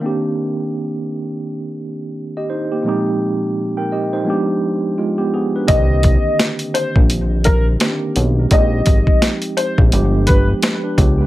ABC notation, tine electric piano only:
X:1
M:4/4
L:1/16
Q:"Swing 16ths" 1/4=85
K:Cm
V:1 name="Tine electric piano"
z12 z [Ge] [Ec] [B,G]- | [B,G] z4 [Bg] [Ge] [Ec]2 z3 [A,F] [=B,G] [B,A] [D=B]- | [D=B] z12 z3 | z12 z [D=B] [=B,G] [A,F] |]
V:2 name="Tine electric piano"
[E,B,CDG]16 | [B,,F,A,CEG]8 [F,A,=B,DG]8 | [D,E,B,CG]12 [E,B,CDG]4 | [F,A,CEG]8 [F,A,=B,DG]8 |]